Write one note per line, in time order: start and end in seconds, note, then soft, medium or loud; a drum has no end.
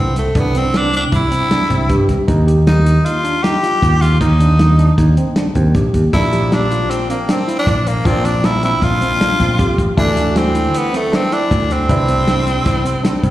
0.00 0.31 C2 medium
0.00 0.17 C4 medium
0.00 0.11 E4 medium
0.16 0.40 A3 medium
0.16 snare soft
0.16 closed hi-hat medium
0.35 1.04 C2 loud
0.35 0.59 B3 medium
0.35 0.52 D4 medium
0.35 kick loud
0.35 closed hi-hat medium
0.55 0.72 C4 medium
0.55 0.78 C4 medium
0.55 closed hi-hat medium
0.74 0.91 D4 medium
0.74 0.95 D4 medium
0.74 snare medium
0.74 closed hi-hat medium
0.93 1.10 C4 medium
0.93 1.04 D4 medium
0.93 closed hi-hat medium
1.12 1.30 C2 medium
1.12 1.29 E4 medium
1.12 2.06 E4 medium
1.12 kick medium
1.12 closed hi-hat medium
1.31 1.48 C4 medium
1.31 closed hi-hat medium
1.51 1.68 D4 medium
1.51 snare loud
1.51 closed hi-hat medium
1.69 1.88 C2 medium
1.69 1.86 C4 medium
1.69 kick medium
1.69 closed hi-hat medium
1.89 2.07 G2 medium
1.89 2.22 G4 medium
1.89 kick loud
1.89 closed hi-hat medium
2.08 2.17 C2 medium
2.08 kick medium
2.08 snare soft
2.08 closed hi-hat medium
2.28 2.97 D#2 medium
2.28 2.44 D#4 medium
2.28 kick loud
2.28 closed hi-hat medium
2.47 2.80 G4 medium
2.47 closed hi-hat medium
2.67 3.06 D#4 medium
2.67 snare loud
2.67 closed hi-hat medium
2.86 3.19 D#4 medium
2.86 snare soft
2.86 closed hi-hat medium
3.05 3.44 F4 medium
3.05 closed hi-hat medium
3.24 3.41 D4 medium
3.24 closed hi-hat medium
3.43 3.60 D#4 medium
3.43 4.03 G4 loud
3.43 snare loud
3.43 closed hi-hat medium
3.63 3.96 F4 medium
3.63 snare soft
3.63 closed hi-hat medium
3.82 4.17 D#2 medium
3.82 kick medium
3.82 closed hi-hat medium
4.01 4.20 F4 medium
4.01 snare soft
4.01 closed hi-hat medium
4.21 4.89 D#2 medium
4.21 4.94 D#4 medium
4.21 4.37 D#4 medium
4.21 kick loud
4.21 closed hi-hat medium
4.40 4.57 D4 medium
4.40 closed hi-hat medium
4.59 4.76 D#4 medium
4.59 snare loud
4.59 closed hi-hat medium
4.79 4.95 D4 medium
4.79 closed hi-hat medium
4.98 5.15 D#2 medium
4.98 5.14 D#4 medium
4.98 kick medium
4.98 snare soft
4.98 closed hi-hat medium
5.17 5.34 C4 medium
5.17 closed hi-hat medium
5.36 5.53 D4 medium
5.36 snare loud
5.36 closed hi-hat medium
5.55 5.73 D#2 medium
5.55 5.72 C4 medium
5.55 kick medium
5.55 closed hi-hat medium
5.75 5.92 A#1 medium
5.75 6.08 G4 medium
5.75 kick medium
5.75 snare soft
5.75 closed hi-hat medium
5.94 6.03 D#2 medium
5.94 kick medium
5.94 closed hi-hat medium
6.13 6.82 A#1 medium
6.13 8.02 F3 medium
6.13 8.02 A#3 medium
6.13 6.30 D4 medium
6.13 8.02 D4 medium
6.13 6.55 E4 medium
6.13 kick loud
6.13 closed hi-hat medium
6.33 6.65 G4 medium
6.33 snare soft
6.33 closed hi-hat medium
6.52 6.92 D4 medium
6.52 snare loud
6.52 closed hi-hat medium
6.71 7.04 F4 medium
6.71 closed hi-hat medium
6.90 7.09 C4 medium
6.90 snare soft
6.90 closed hi-hat medium
7.09 7.32 A#3 medium
7.09 7.26 C4 medium
7.09 closed hi-hat medium
7.29 7.58 C4 medium
7.29 7.45 D4 medium
7.29 snare loud
7.29 closed hi-hat medium
7.48 7.80 E4 medium
7.48 closed hi-hat medium
7.59 7.89 D4 medium
7.67 8.01 A#1 medium
7.67 kick medium
7.67 closed hi-hat medium
7.87 8.08 A#3 medium
7.87 closed hi-hat medium
8.05 8.74 A#1 medium
8.05 9.93 F3 medium
8.05 9.94 A#3 medium
8.05 8.27 C4 loud
8.05 8.21 D4 medium
8.05 9.94 D4 medium
8.05 9.94 F4 medium
8.05 kick loud
8.05 closed hi-hat medium
8.24 8.41 C4 medium
8.24 8.46 D4 medium
8.24 closed hi-hat medium
8.44 8.60 D4 medium
8.44 8.63 E4 medium
8.44 snare loud
8.44 closed hi-hat medium
8.63 8.80 C4 medium
8.63 8.85 E4 medium
8.63 snare soft
8.63 closed hi-hat medium
8.82 8.99 A#1 medium
8.82 8.99 D4 medium
8.82 9.79 F4 loud
8.82 kick loud
8.82 closed hi-hat medium
9.02 9.18 C4 medium
9.02 snare soft
9.02 closed hi-hat medium
9.20 9.37 D4 medium
9.20 snare loud
9.20 closed hi-hat medium
9.40 9.57 A#1 medium
9.40 9.56 C4 medium
9.40 kick medium
9.40 snare soft
9.40 closed hi-hat medium
9.59 9.76 F2 medium
9.59 9.92 G4 medium
9.59 kick loud
9.59 closed hi-hat medium
9.78 9.87 A1 medium
9.78 kick medium
9.78 closed hi-hat medium
9.97 10.66 D2 medium
9.97 11.85 E3 medium
9.97 11.86 A3 medium
9.97 10.14 D4 medium
9.97 11.86 D4 medium
9.97 10.39 D4 loud
9.97 11.86 E4 medium
9.97 kick loud
9.97 closed hi-hat medium
10.17 10.49 F#4 medium
10.17 closed hi-hat medium
10.36 10.79 C4 medium
10.36 snare loud
10.36 closed hi-hat medium
10.55 10.88 E4 medium
10.55 closed hi-hat medium
10.74 10.97 B3 medium
10.74 closed hi-hat medium
10.93 11.16 A3 medium
10.93 11.09 C4 medium
10.93 snare soft
10.93 closed hi-hat medium
11.12 11.35 C4 medium
11.12 11.29 D4 medium
11.12 snare loud
11.12 closed hi-hat medium
11.32 11.74 D4 medium
11.32 11.65 E4 medium
11.32 closed hi-hat medium
11.51 11.85 D2 medium
11.51 kick loud
11.51 closed hi-hat medium
11.71 13.30 C4 medium
11.71 snare soft
11.71 closed hi-hat medium
11.89 12.58 C2 loud
11.89 13.30 G3 medium
11.89 12.06 D4 medium
11.89 13.30 D4 medium
11.89 13.30 E4 medium
11.89 13.30 B4 medium
11.89 kick loud
11.89 closed hi-hat medium
12.08 12.25 C4 medium
12.08 closed hi-hat medium
12.27 12.44 D4 medium
12.27 snare loud
12.27 closed hi-hat medium
12.46 12.63 C4 medium
12.46 closed hi-hat medium
12.65 12.83 C2 medium
12.65 12.82 E4 medium
12.65 kick loud
12.65 closed hi-hat medium
12.84 13.01 C4 medium
12.84 closed hi-hat medium
13.03 13.20 D4 medium
13.03 snare loud
13.03 closed hi-hat medium
13.23 13.30 C2 medium
13.23 13.30 C4 medium
13.23 kick medium
13.23 closed hi-hat medium